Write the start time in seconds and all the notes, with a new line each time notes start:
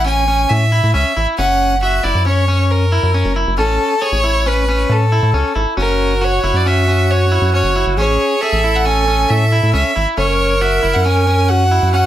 Already playing: A1
0.05 C#4 G#5
0.28 C#4
0.50 A2 E5
0.72 E4
0.83 A2
0.94 C#2 C#4 E5
1.16 A1 E4
1.37 F#1 C#4 F#5
1.83 F#4 E5
2.04 F#1 E4 D5
2.15 F#2
2.26 C#4 C#5
2.48 C#4
2.71 A#4
2.92 E4
3.03 F#2
3.14 C#4
3.25 F#1
3.36 E4
3.47 F#1
3.58 A1 C#4 A4
4.02 G#4 C#5
4.12 A1
4.24 E4
4.46 C#4 B4
4.69 C#4
4.89 A2 A4
5.12 E4
5.23 A2
5.33 C#2 C#4
5.55 G#1 E4
5.77 F#1 C#4 F#4 A#4
6.21 F#4 C#5
6.43 F#1 E4
6.54 F#2 D5
6.66 C#4 E5
6.88 C#4
7.11 C#5
7.32 E4
7.41 F#2
7.54 C#4 C#5
7.64 F#1
7.76 E4
7.86 F#1
7.97 A1 C#4 G#4 C#5
8.41 G#4 A4 E5
8.52 A1
8.64 E4
8.75 F#5
8.85 C#4 G#5
9.08 C#4
9.29 A2 E5
9.52 E4
9.63 A2
9.73 C#2 C#4 E5
9.96 G#1 E4
10.17 F#1 C#4 A#4 C#5
10.61 F#4 E5
10.82 F#1 E4
10.94 F#2 F#5
11.04 C#4 G#5
11.27 C#4
11.48 F#4 F#5
11.71 E4
11.82 F#2
11.93 C#4 F#5